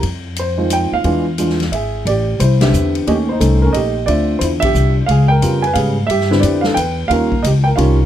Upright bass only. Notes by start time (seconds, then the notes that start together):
0.03 F2
0.92 D#2
1.04 E2
1.71 G#1
2.05 A1
2.40 C2
2.73 E2
3.07 D#2
3.40 C2
3.74 A#1
4.08 D2
4.41 E2
4.74 C2
5.08 C#2
5.42 F2
5.75 G#2
6.09 G2
6.43 F2
6.76 E2
7.10 D#2
7.44 C#2
7.78 C2